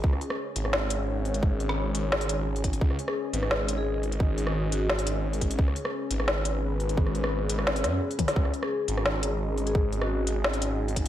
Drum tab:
HH |--o---x---x---ox|--o---x--ox--oxo|--o---x---x---ox|--o---x--ox--oxo|
SD |-r-r---ro-------|---r----o-------|-r-r---ro-------|---r----o-------|
T1 |----------------|----------------|----------------|----------------|
BD |o---------------|o-------------o-|o---------------|o-------------o-|

HH |--o---x---x---ox|--o---x--ox--oxo|--o---x---x---ox|--o---x--ox--ox-|
SD |-r-r---ro-------|-r-r---ro-o----o|-r-r---ro-------|---r----o-------|
T1 |----------------|--------------o-|----------------|----------------|
BD |o---------------|o-------------o-|o---------------|o-------------o-|